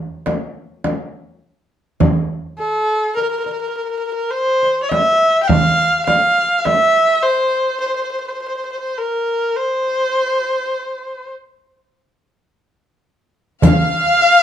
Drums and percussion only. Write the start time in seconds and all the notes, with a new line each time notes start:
0.26 darbuka tek, frame drum
0.84 darbuka tek, frame drum
2.00 darbuka dum, frame drum
2.59 darbuka ka
3.17 darbuka ka
3.46 darbuka ka
4.63 darbuka ka
4.91 darbuka tek, frame drum
5.49 frame drum, darbuka dum
6.07 darbuka tek, frame drum
6.65 darbuka tek, frame drum
13.62 riq, darbuka dum, frame drum
14.21 darbuka ka